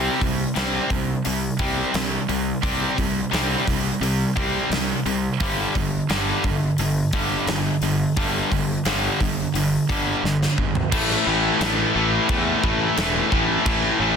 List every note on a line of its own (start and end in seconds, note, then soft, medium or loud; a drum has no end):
0.00 0.19 C3 medium
0.00 0.19 G3 medium
0.00 0.19 C4 medium
0.21 0.43 C2 medium
0.21 0.53 C3 medium
0.21 0.52 G3 medium
0.21 kick medium
0.21 open hi-hat soft
0.55 0.78 C2 medium
0.55 0.88 C3 medium
0.55 0.88 G3 medium
0.55 0.89 C4 medium
0.55 snare medium
0.55 open hi-hat medium
0.90 1.12 C2 medium
0.90 1.22 C3 medium
0.90 1.22 G3 medium
0.90 kick medium
0.90 open hi-hat soft
1.25 1.48 C2 medium
1.25 1.56 C3 medium
1.25 1.56 G3 medium
1.25 open hi-hat medium
1.59 1.81 C2 medium
1.59 1.92 C3 medium
1.59 1.92 G3 loud
1.59 1.93 C4 medium
1.59 kick medium
1.59 open hi-hat medium
1.93 2.16 C2 medium
1.93 2.25 C3 medium
1.93 2.25 G3 medium
1.93 snare loud
1.93 open hi-hat medium
2.29 2.51 C2 medium
2.29 2.60 C3 medium
2.29 2.60 G3 medium
2.29 open hi-hat soft
2.63 2.85 C2 medium
2.63 2.96 C3 medium
2.63 2.96 G3 medium
2.63 2.96 C4 loud
2.63 kick loud
2.63 open hi-hat medium
2.97 3.20 C2 medium
2.97 3.29 C3 medium
2.97 3.29 G3 medium
2.97 kick medium
2.97 open hi-hat medium
3.31 3.54 C2 medium
3.31 3.64 C3 medium
3.31 3.64 G3 medium
3.31 3.65 C4 medium
3.31 snare loud
3.31 open hi-hat medium
3.66 3.89 C2 medium
3.66 3.98 C3 medium
3.66 3.98 G3 medium
3.66 kick medium
3.66 snare soft
3.66 open hi-hat medium
4.01 4.23 C2 medium
4.01 4.33 C3 medium
4.01 4.33 G3 medium
4.01 open hi-hat medium
4.36 4.58 C2 medium
4.36 4.68 C3 medium
4.36 4.69 G3 medium
4.36 4.69 C4 medium
4.36 kick medium
4.36 open hi-hat medium
4.70 4.92 C2 medium
4.70 5.02 C3 medium
4.70 5.02 G3 medium
4.70 snare loud
4.70 open hi-hat medium
5.05 5.27 C2 medium
5.05 5.37 C3 medium
5.05 5.37 G3 medium
5.05 open hi-hat soft
5.40 5.62 G1 medium
5.40 5.73 G2 medium
5.40 5.73 D3 medium
5.40 5.73 G3 medium
5.40 kick loud
5.40 open hi-hat medium
5.75 5.97 G1 medium
5.75 6.06 G2 medium
5.75 6.06 D3 medium
5.75 kick medium
5.75 open hi-hat soft
6.10 6.31 G1 medium
6.10 6.42 G2 medium
6.10 6.42 D3 medium
6.10 6.42 G3 loud
6.10 snare medium
6.10 open hi-hat medium
6.44 6.66 G1 medium
6.44 6.75 G2 medium
6.44 6.75 D3 medium
6.44 kick medium
6.44 open hi-hat soft
6.78 7.00 G1 medium
6.78 7.10 G2 medium
6.78 7.10 D3 medium
6.78 open hi-hat medium
7.13 7.35 G1 medium
7.13 7.46 G2 medium
7.13 7.46 D3 medium
7.13 7.46 G3 medium
7.13 kick medium
7.13 open hi-hat soft
7.47 7.69 G1 medium
7.47 7.79 G2 medium
7.47 7.79 D3 medium
7.47 snare loud
7.47 open hi-hat medium
7.82 8.04 G1 medium
7.82 8.13 G2 medium
7.82 8.13 D3 medium
7.82 open hi-hat soft
8.16 8.39 G1 medium
8.16 8.49 G2 medium
8.16 8.49 D3 medium
8.16 8.50 G3 medium
8.16 kick loud
8.16 open hi-hat medium
8.51 8.73 G1 medium
8.51 8.82 G2 medium
8.51 8.82 D3 medium
8.51 kick medium
8.51 open hi-hat soft
8.85 9.07 G1 medium
8.85 9.18 G2 medium
8.85 9.18 D3 medium
8.85 9.19 G3 loud
8.85 snare medium
8.85 open hi-hat medium
9.20 9.42 G1 medium
9.20 9.51 G2 medium
9.20 9.51 D3 medium
9.20 kick medium
9.20 open hi-hat medium
9.54 9.76 G1 medium
9.54 9.85 G2 medium
9.54 9.85 D3 medium
9.54 open hi-hat medium
9.89 10.11 G1 medium
9.89 10.21 G2 medium
9.89 10.21 D3 medium
9.89 10.22 G3 medium
9.89 kick medium
9.89 open hi-hat medium
10.23 10.45 G1 medium
10.23 10.54 G2 medium
10.23 10.54 D3 medium
10.23 snare medium
10.43 snare medium
10.58 10.80 G#1 medium
10.58 10.89 G2 medium
10.58 10.89 D3 medium
10.58 kick medium
10.75 floor tom medium
10.92 11.15 A1 loud
10.92 11.26 A2 medium
10.92 11.26 E3 loud
10.92 11.27 A3 loud
10.92 kick loud
10.92 crash loud
10.92 crash medium
11.11 snare soft
11.26 11.49 A1 medium
11.26 11.61 A2 medium
11.26 11.62 E3 medium
11.26 11.62 A3 medium
11.60 11.83 A1 medium
11.60 11.94 A2 loud
11.60 11.95 E3 loud
11.60 11.96 A3 loud
11.60 snare loud
11.60 crash medium
11.95 12.18 A1 medium
11.95 12.28 A2 medium
11.95 12.28 E3 medium
11.95 12.30 A3 loud
12.29 12.52 E2 medium
12.29 12.62 A2 medium
12.29 12.63 E3 loud
12.29 12.64 A3 loud
12.29 kick loud
12.29 crash medium
12.63 12.86 A1 medium
12.63 12.95 A2 medium
12.63 12.96 E3 medium
12.63 12.98 A3 loud
12.63 kick medium
12.96 13.20 E1 loud
12.96 13.30 A2 loud
12.96 13.31 E3 medium
12.96 13.32 A3 loud
12.96 snare loud
12.96 crash medium
13.31 13.55 A1 medium
13.31 13.64 A2 medium
13.31 13.64 E3 medium
13.31 13.65 A3 medium
13.31 kick medium
13.65 13.88 A1 loud
13.65 13.98 A2 medium
13.65 13.99 E3 medium
13.65 14.00 A3 loud
13.65 kick loud
13.65 crash medium
13.99 14.16 A1 medium
13.99 14.16 A2 medium
13.99 14.16 E3 medium
13.99 14.16 A3 medium